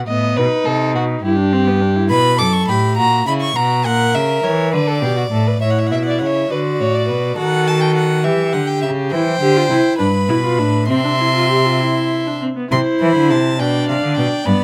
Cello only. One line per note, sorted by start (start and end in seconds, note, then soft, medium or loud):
0.09 0.36 A2 medium
0.37 0.45 B2 medium
0.66 0.96 C3 medium
0.95 1.23 B2 medium
1.24 2.12 G2 medium
2.10 2.41 B2 medium
2.39 2.68 F#2 medium
2.68 3.00 A2 medium
2.98 3.27 A#2 medium
3.27 3.56 C#3 medium
3.56 3.87 B2 medium
3.85 4.17 A#2 medium
4.15 4.43 C#3 medium
4.44 4.74 E3 medium
4.73 5.04 D3 medium
5.02 5.30 B2 medium
5.31 5.61 A2 medium
5.61 5.93 A2 medium
5.91 6.23 B2 medium
6.21 6.50 C#3 medium
6.51 6.82 D3 medium
6.81 7.11 A2 medium
7.10 7.38 B2 medium
7.38 8.26 D#3 medium
8.25 8.55 E3 medium
8.53 8.85 D3 medium
8.83 9.13 C#3 medium
9.12 9.40 E3 medium
9.41 9.69 D3 medium
9.70 9.78 C3 medium
9.99 10.30 G2 medium
10.29 10.60 B2 medium
10.59 10.91 A2 medium
10.89 12.42 C3 medium
12.72 12.80 C3 medium
13.01 13.16 E3 medium
13.16 13.33 D3 medium
13.31 13.62 C3 medium
13.60 13.89 B2 medium
13.89 13.95 C3 medium
14.03 14.18 D3 medium
14.18 14.26 B2 medium
14.46 14.54 G2 medium